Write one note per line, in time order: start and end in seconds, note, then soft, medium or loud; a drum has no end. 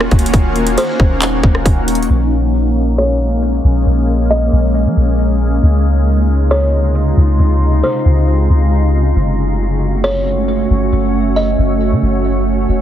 0.00 2.06 D#3 medium
0.00 2.06 A#3 medium
0.00 2.06 C#4 medium
0.00 0.32 F4 medium
0.00 2.06 F#4 medium
0.00 0.30 C#5 medium
0.00 cross-stick loud
0.11 0.33 D#1 loud
0.11 kick medium
0.11 closed hi-hat soft
0.19 closed hi-hat medium
0.26 closed hi-hat medium
0.34 0.76 D#1 loud
0.34 2.08 D#4 medium
0.34 kick loud
0.34 closed hi-hat medium
0.56 closed hi-hat soft
0.67 closed hi-hat medium
0.78 1.62 C5 medium
0.78 closed hi-hat medium
1.00 1.42 D#1 loud
1.00 kick loud
1.22 clap loud
1.22 closed hi-hat medium
1.43 1.65 D#1 loud
1.43 kick loud
1.55 cross-stick medium
1.66 2.08 D#1 loud
1.66 kick loud
1.66 closed hi-hat medium
1.88 closed hi-hat medium
1.95 closed hi-hat medium
2.03 closed hi-hat soft
2.10 3.60 A#1 loud
2.10 9.12 G#3 medium
2.10 5.59 A#3 medium
2.10 5.59 C#4 medium
2.98 3.82 C#5 medium
3.64 3.86 A#1 loud
3.86 4.50 A#1 loud
4.30 5.15 D#5 medium
4.53 4.87 A#1 loud
4.86 4.96 F3 loud
4.97 5.60 A#1 loud
5.63 7.13 C#2 loud
5.63 9.12 C3 medium
5.63 9.12 C#3 medium
5.63 9.12 D#4 medium
5.63 9.12 F4 medium
6.51 7.35 C#5 medium
7.17 7.38 C#2 loud
7.39 7.82 C#2 loud
7.83 8.68 C5 medium
8.05 8.48 C#2 loud
8.50 9.13 C#2 loud
9.16 10.66 F#1 loud
9.16 12.65 A3 medium
9.16 12.81 C#4 medium
9.16 12.65 F#4 medium
10.04 10.88 C#5 medium
10.70 10.91 F#1 loud
10.92 11.56 F#1 loud
11.36 12.21 D#5 medium
11.58 11.93 F#1 loud
11.91 12.02 C#3 loud
12.03 12.66 F#1 loud
12.69 12.81 D#1 loud